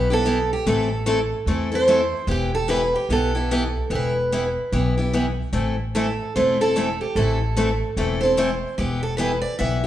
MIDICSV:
0, 0, Header, 1, 4, 480
1, 0, Start_track
1, 0, Key_signature, 1, "minor"
1, 0, Tempo, 405954
1, 796, Time_signature, 4, 2, 24, 8
1, 11669, End_track
2, 0, Start_track
2, 0, Title_t, "Steel-string acoustic guitar"
2, 0, Program_c, 0, 25
2, 0, Note_on_c, 0, 71, 87
2, 146, Note_off_c, 0, 71, 0
2, 157, Note_on_c, 0, 69, 85
2, 620, Note_off_c, 0, 69, 0
2, 625, Note_on_c, 0, 67, 76
2, 802, Note_off_c, 0, 67, 0
2, 806, Note_on_c, 0, 69, 84
2, 1713, Note_off_c, 0, 69, 0
2, 2071, Note_on_c, 0, 72, 102
2, 2679, Note_off_c, 0, 72, 0
2, 2734, Note_on_c, 0, 67, 86
2, 3011, Note_on_c, 0, 69, 89
2, 3028, Note_off_c, 0, 67, 0
2, 3187, Note_off_c, 0, 69, 0
2, 3192, Note_on_c, 0, 71, 86
2, 3494, Note_on_c, 0, 67, 80
2, 3497, Note_off_c, 0, 71, 0
2, 3682, Note_off_c, 0, 67, 0
2, 3695, Note_on_c, 0, 69, 87
2, 4669, Note_off_c, 0, 69, 0
2, 4674, Note_on_c, 0, 71, 78
2, 6341, Note_off_c, 0, 71, 0
2, 7032, Note_on_c, 0, 69, 63
2, 7479, Note_off_c, 0, 69, 0
2, 7516, Note_on_c, 0, 72, 71
2, 7816, Note_off_c, 0, 72, 0
2, 7820, Note_on_c, 0, 69, 81
2, 8261, Note_off_c, 0, 69, 0
2, 8287, Note_on_c, 0, 67, 71
2, 8459, Note_off_c, 0, 67, 0
2, 8466, Note_on_c, 0, 69, 80
2, 9382, Note_off_c, 0, 69, 0
2, 9703, Note_on_c, 0, 72, 88
2, 10333, Note_off_c, 0, 72, 0
2, 10379, Note_on_c, 0, 67, 80
2, 10674, Note_on_c, 0, 69, 81
2, 10690, Note_off_c, 0, 67, 0
2, 10838, Note_off_c, 0, 69, 0
2, 10842, Note_on_c, 0, 71, 77
2, 11128, Note_off_c, 0, 71, 0
2, 11133, Note_on_c, 0, 74, 84
2, 11321, Note_off_c, 0, 74, 0
2, 11335, Note_on_c, 0, 76, 90
2, 11669, Note_off_c, 0, 76, 0
2, 11669, End_track
3, 0, Start_track
3, 0, Title_t, "Steel-string acoustic guitar"
3, 0, Program_c, 1, 25
3, 121, Note_on_c, 1, 67, 57
3, 136, Note_on_c, 1, 64, 50
3, 143, Note_on_c, 1, 59, 45
3, 291, Note_off_c, 1, 59, 0
3, 291, Note_off_c, 1, 64, 0
3, 298, Note_on_c, 1, 52, 72
3, 303, Note_off_c, 1, 67, 0
3, 305, Note_on_c, 1, 64, 85
3, 306, Note_on_c, 1, 59, 74
3, 317, Note_on_c, 1, 67, 88
3, 438, Note_off_c, 1, 52, 0
3, 441, Note_off_c, 1, 64, 0
3, 442, Note_off_c, 1, 59, 0
3, 448, Note_off_c, 1, 67, 0
3, 785, Note_on_c, 1, 52, 64
3, 787, Note_on_c, 1, 57, 63
3, 788, Note_on_c, 1, 60, 66
3, 793, Note_on_c, 1, 64, 62
3, 798, Note_on_c, 1, 69, 70
3, 1038, Note_off_c, 1, 52, 0
3, 1039, Note_off_c, 1, 57, 0
3, 1040, Note_off_c, 1, 60, 0
3, 1042, Note_off_c, 1, 64, 0
3, 1045, Note_off_c, 1, 69, 0
3, 1254, Note_on_c, 1, 57, 79
3, 1257, Note_on_c, 1, 60, 77
3, 1258, Note_on_c, 1, 52, 77
3, 1261, Note_on_c, 1, 64, 88
3, 1268, Note_on_c, 1, 69, 93
3, 1396, Note_off_c, 1, 57, 0
3, 1398, Note_off_c, 1, 52, 0
3, 1398, Note_off_c, 1, 60, 0
3, 1399, Note_off_c, 1, 64, 0
3, 1403, Note_off_c, 1, 69, 0
3, 1741, Note_on_c, 1, 52, 58
3, 1746, Note_on_c, 1, 57, 60
3, 1748, Note_on_c, 1, 69, 60
3, 1750, Note_on_c, 1, 60, 63
3, 1752, Note_on_c, 1, 64, 61
3, 1996, Note_off_c, 1, 52, 0
3, 1998, Note_off_c, 1, 57, 0
3, 1999, Note_off_c, 1, 69, 0
3, 2000, Note_off_c, 1, 60, 0
3, 2001, Note_off_c, 1, 64, 0
3, 2029, Note_on_c, 1, 69, 60
3, 2040, Note_on_c, 1, 64, 54
3, 2053, Note_on_c, 1, 60, 46
3, 2209, Note_off_c, 1, 60, 0
3, 2213, Note_off_c, 1, 64, 0
3, 2217, Note_off_c, 1, 69, 0
3, 2218, Note_on_c, 1, 52, 83
3, 2221, Note_on_c, 1, 57, 73
3, 2224, Note_on_c, 1, 60, 84
3, 2227, Note_on_c, 1, 64, 90
3, 2234, Note_on_c, 1, 69, 87
3, 2357, Note_off_c, 1, 52, 0
3, 2359, Note_off_c, 1, 57, 0
3, 2360, Note_off_c, 1, 60, 0
3, 2362, Note_off_c, 1, 64, 0
3, 2366, Note_off_c, 1, 69, 0
3, 2688, Note_on_c, 1, 52, 59
3, 2695, Note_on_c, 1, 59, 63
3, 2698, Note_on_c, 1, 64, 67
3, 2702, Note_on_c, 1, 67, 63
3, 2949, Note_off_c, 1, 52, 0
3, 2952, Note_off_c, 1, 59, 0
3, 2954, Note_off_c, 1, 64, 0
3, 2956, Note_off_c, 1, 67, 0
3, 3168, Note_on_c, 1, 52, 74
3, 3176, Note_on_c, 1, 59, 81
3, 3179, Note_on_c, 1, 67, 82
3, 3183, Note_on_c, 1, 64, 79
3, 3313, Note_off_c, 1, 52, 0
3, 3316, Note_off_c, 1, 59, 0
3, 3318, Note_off_c, 1, 67, 0
3, 3320, Note_off_c, 1, 64, 0
3, 3664, Note_on_c, 1, 52, 62
3, 3670, Note_on_c, 1, 59, 71
3, 3671, Note_on_c, 1, 64, 65
3, 3675, Note_on_c, 1, 67, 64
3, 3917, Note_off_c, 1, 52, 0
3, 3920, Note_off_c, 1, 59, 0
3, 3920, Note_off_c, 1, 64, 0
3, 3922, Note_off_c, 1, 67, 0
3, 3958, Note_on_c, 1, 67, 58
3, 3969, Note_on_c, 1, 64, 51
3, 3982, Note_on_c, 1, 59, 48
3, 4141, Note_off_c, 1, 59, 0
3, 4141, Note_off_c, 1, 67, 0
3, 4146, Note_off_c, 1, 64, 0
3, 4152, Note_on_c, 1, 52, 72
3, 4155, Note_on_c, 1, 59, 85
3, 4159, Note_on_c, 1, 64, 84
3, 4164, Note_on_c, 1, 67, 87
3, 4284, Note_off_c, 1, 52, 0
3, 4285, Note_off_c, 1, 59, 0
3, 4288, Note_off_c, 1, 64, 0
3, 4290, Note_off_c, 1, 67, 0
3, 4616, Note_on_c, 1, 59, 63
3, 4618, Note_on_c, 1, 52, 59
3, 4622, Note_on_c, 1, 64, 64
3, 4630, Note_on_c, 1, 67, 67
3, 4873, Note_off_c, 1, 52, 0
3, 4873, Note_off_c, 1, 59, 0
3, 4876, Note_off_c, 1, 64, 0
3, 4879, Note_off_c, 1, 67, 0
3, 5113, Note_on_c, 1, 59, 76
3, 5114, Note_on_c, 1, 52, 75
3, 5119, Note_on_c, 1, 64, 81
3, 5128, Note_on_c, 1, 67, 83
3, 5244, Note_off_c, 1, 59, 0
3, 5245, Note_off_c, 1, 52, 0
3, 5247, Note_off_c, 1, 64, 0
3, 5252, Note_off_c, 1, 67, 0
3, 5587, Note_on_c, 1, 52, 63
3, 5594, Note_on_c, 1, 59, 60
3, 5595, Note_on_c, 1, 64, 63
3, 5597, Note_on_c, 1, 67, 66
3, 5838, Note_off_c, 1, 52, 0
3, 5841, Note_off_c, 1, 59, 0
3, 5842, Note_off_c, 1, 64, 0
3, 5843, Note_off_c, 1, 67, 0
3, 5883, Note_on_c, 1, 67, 49
3, 5896, Note_on_c, 1, 64, 51
3, 5909, Note_on_c, 1, 59, 48
3, 6062, Note_off_c, 1, 59, 0
3, 6063, Note_off_c, 1, 64, 0
3, 6063, Note_off_c, 1, 67, 0
3, 6071, Note_on_c, 1, 52, 85
3, 6076, Note_on_c, 1, 59, 75
3, 6078, Note_on_c, 1, 64, 75
3, 6090, Note_on_c, 1, 67, 83
3, 6203, Note_off_c, 1, 52, 0
3, 6206, Note_off_c, 1, 59, 0
3, 6207, Note_off_c, 1, 64, 0
3, 6213, Note_off_c, 1, 67, 0
3, 6535, Note_on_c, 1, 52, 58
3, 6539, Note_on_c, 1, 57, 59
3, 6541, Note_on_c, 1, 60, 68
3, 6548, Note_on_c, 1, 64, 65
3, 6550, Note_on_c, 1, 69, 65
3, 6791, Note_off_c, 1, 52, 0
3, 6794, Note_off_c, 1, 57, 0
3, 6795, Note_off_c, 1, 60, 0
3, 6798, Note_off_c, 1, 64, 0
3, 6799, Note_off_c, 1, 69, 0
3, 7034, Note_on_c, 1, 52, 71
3, 7041, Note_on_c, 1, 57, 82
3, 7044, Note_on_c, 1, 60, 75
3, 7047, Note_on_c, 1, 64, 77
3, 7050, Note_on_c, 1, 69, 79
3, 7165, Note_off_c, 1, 52, 0
3, 7168, Note_off_c, 1, 57, 0
3, 7169, Note_off_c, 1, 60, 0
3, 7171, Note_off_c, 1, 64, 0
3, 7173, Note_off_c, 1, 69, 0
3, 7516, Note_on_c, 1, 52, 60
3, 7524, Note_on_c, 1, 60, 68
3, 7525, Note_on_c, 1, 57, 64
3, 7528, Note_on_c, 1, 64, 61
3, 7531, Note_on_c, 1, 69, 70
3, 7762, Note_off_c, 1, 52, 0
3, 7766, Note_off_c, 1, 60, 0
3, 7767, Note_off_c, 1, 57, 0
3, 7768, Note_off_c, 1, 64, 0
3, 7769, Note_off_c, 1, 69, 0
3, 7815, Note_on_c, 1, 69, 60
3, 7828, Note_on_c, 1, 64, 53
3, 7837, Note_on_c, 1, 60, 50
3, 7986, Note_off_c, 1, 60, 0
3, 7988, Note_off_c, 1, 64, 0
3, 7989, Note_off_c, 1, 69, 0
3, 7991, Note_on_c, 1, 52, 80
3, 7996, Note_on_c, 1, 57, 78
3, 8000, Note_on_c, 1, 60, 82
3, 8002, Note_on_c, 1, 64, 82
3, 8012, Note_on_c, 1, 69, 83
3, 8123, Note_off_c, 1, 52, 0
3, 8126, Note_off_c, 1, 57, 0
3, 8128, Note_off_c, 1, 60, 0
3, 8128, Note_off_c, 1, 64, 0
3, 8133, Note_off_c, 1, 69, 0
3, 8476, Note_on_c, 1, 57, 59
3, 8477, Note_on_c, 1, 52, 63
3, 8483, Note_on_c, 1, 64, 66
3, 8483, Note_on_c, 1, 69, 66
3, 8487, Note_on_c, 1, 60, 60
3, 8722, Note_off_c, 1, 52, 0
3, 8722, Note_off_c, 1, 57, 0
3, 8725, Note_off_c, 1, 64, 0
3, 8725, Note_off_c, 1, 69, 0
3, 8728, Note_off_c, 1, 60, 0
3, 8945, Note_on_c, 1, 52, 87
3, 8951, Note_on_c, 1, 57, 76
3, 8952, Note_on_c, 1, 60, 86
3, 8960, Note_on_c, 1, 69, 81
3, 8961, Note_on_c, 1, 64, 87
3, 9080, Note_off_c, 1, 52, 0
3, 9083, Note_off_c, 1, 57, 0
3, 9083, Note_off_c, 1, 60, 0
3, 9088, Note_off_c, 1, 64, 0
3, 9088, Note_off_c, 1, 69, 0
3, 9425, Note_on_c, 1, 57, 60
3, 9427, Note_on_c, 1, 52, 62
3, 9431, Note_on_c, 1, 64, 64
3, 9435, Note_on_c, 1, 60, 66
3, 9439, Note_on_c, 1, 69, 67
3, 9677, Note_off_c, 1, 52, 0
3, 9677, Note_off_c, 1, 57, 0
3, 9680, Note_off_c, 1, 64, 0
3, 9681, Note_off_c, 1, 60, 0
3, 9683, Note_off_c, 1, 69, 0
3, 9732, Note_on_c, 1, 69, 58
3, 9738, Note_on_c, 1, 64, 50
3, 9753, Note_on_c, 1, 60, 43
3, 9893, Note_off_c, 1, 60, 0
3, 9895, Note_off_c, 1, 64, 0
3, 9897, Note_off_c, 1, 69, 0
3, 9900, Note_on_c, 1, 52, 78
3, 9904, Note_on_c, 1, 57, 72
3, 9907, Note_on_c, 1, 60, 89
3, 9909, Note_on_c, 1, 64, 92
3, 9911, Note_on_c, 1, 69, 88
3, 10038, Note_off_c, 1, 52, 0
3, 10039, Note_off_c, 1, 57, 0
3, 10041, Note_off_c, 1, 60, 0
3, 10042, Note_off_c, 1, 64, 0
3, 10043, Note_off_c, 1, 69, 0
3, 10389, Note_on_c, 1, 59, 60
3, 10390, Note_on_c, 1, 52, 67
3, 10395, Note_on_c, 1, 64, 61
3, 10406, Note_on_c, 1, 67, 61
3, 10639, Note_off_c, 1, 52, 0
3, 10639, Note_off_c, 1, 59, 0
3, 10641, Note_off_c, 1, 64, 0
3, 10647, Note_off_c, 1, 67, 0
3, 10856, Note_on_c, 1, 52, 84
3, 10864, Note_on_c, 1, 59, 83
3, 10870, Note_on_c, 1, 64, 86
3, 10875, Note_on_c, 1, 67, 95
3, 10995, Note_off_c, 1, 52, 0
3, 10999, Note_off_c, 1, 59, 0
3, 11003, Note_off_c, 1, 64, 0
3, 11005, Note_off_c, 1, 67, 0
3, 11339, Note_on_c, 1, 52, 58
3, 11348, Note_on_c, 1, 59, 62
3, 11353, Note_on_c, 1, 64, 67
3, 11353, Note_on_c, 1, 67, 63
3, 11593, Note_off_c, 1, 52, 0
3, 11598, Note_off_c, 1, 59, 0
3, 11601, Note_off_c, 1, 64, 0
3, 11601, Note_off_c, 1, 67, 0
3, 11631, Note_on_c, 1, 67, 58
3, 11669, Note_off_c, 1, 67, 0
3, 11669, End_track
4, 0, Start_track
4, 0, Title_t, "Upright bass"
4, 0, Program_c, 2, 32
4, 0, Note_on_c, 2, 35, 73
4, 597, Note_off_c, 2, 35, 0
4, 785, Note_on_c, 2, 33, 77
4, 1557, Note_off_c, 2, 33, 0
4, 1727, Note_on_c, 2, 40, 71
4, 2506, Note_off_c, 2, 40, 0
4, 2685, Note_on_c, 2, 28, 86
4, 3464, Note_off_c, 2, 28, 0
4, 3652, Note_on_c, 2, 35, 70
4, 4429, Note_off_c, 2, 35, 0
4, 4612, Note_on_c, 2, 28, 83
4, 5388, Note_off_c, 2, 28, 0
4, 5584, Note_on_c, 2, 35, 77
4, 6355, Note_off_c, 2, 35, 0
4, 6533, Note_on_c, 2, 33, 80
4, 7309, Note_off_c, 2, 33, 0
4, 7516, Note_on_c, 2, 28, 69
4, 8282, Note_off_c, 2, 28, 0
4, 8459, Note_on_c, 2, 33, 86
4, 9233, Note_off_c, 2, 33, 0
4, 9418, Note_on_c, 2, 28, 71
4, 10192, Note_off_c, 2, 28, 0
4, 10382, Note_on_c, 2, 28, 82
4, 11154, Note_off_c, 2, 28, 0
4, 11351, Note_on_c, 2, 35, 77
4, 11669, Note_off_c, 2, 35, 0
4, 11669, End_track
0, 0, End_of_file